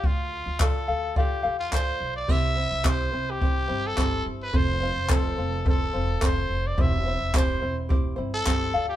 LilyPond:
<<
  \new Staff \with { instrumentName = "Trumpet" } { \time 4/4 \key c \major \tempo 4 = 107 f'4 a'4 g'8. f'16 c''8. d''16 | e''4 c''8. g'4 a'4 b'16 | c''4 a'4 a'4 c''8. d''16 | e''4 c''8. r4 a'4 g'16 | }
  \new Staff \with { instrumentName = "Ukulele" } { \time 4/4 \key c \major <f' a' d'' f''>4 <f' a' d'' f''>8 <f' a' f''>8 <f' a' d'' f''>8 <f' a' f''>8 <f' a' d'' f''>4 | <c' e' g' c''>8 <c' e' c''>8 <c' e' g' c''>8 <c' e' c''>8 <c' e' g' c''>8 <c' e' c''>8 <c' e' g' c''>4 | <c' f' a' c''>8 <c' f' c''>8 <c' f' a' c''>8 <c' f' c''>8 <c' f' a' c''>8 <c' f' c''>8 <c' f' a' c''>4 | <c' e' g' c''>8 <c' e' c''>8 <c' e' g' c''>8 <c' e' c''>8 <c' e' g' c''>8 <c' e' c''>8 <c' e' g' c''>8 <f' a' d'' f''>8 | }
  \new Staff \with { instrumentName = "Upright bass" } { \clef bass \time 4/4 \key c \major d,8. d,8. d,4 e,8 d,8 b,,8 | c,8. c,8. c,4 g,,8 g,,8 g,,8 | f,,8. f,,8. f,,4 e,,8 f,,8 f,,8 | e,,8. e,,8. e,,4 g,,8 g,,8 d,8 | }
  \new DrumStaff \with { instrumentName = "Drums" } \drummode { \time 4/4 bd4 <hc bd>4 bd4 <hc bd>4 | <cymc bd>4 <hc bd>4 bd4 <hc bd>4 | bd4 <hc bd>4 bd4 <hc bd>4 | bd4 <hc bd>4 bd4 <hc bd>4 | }
>>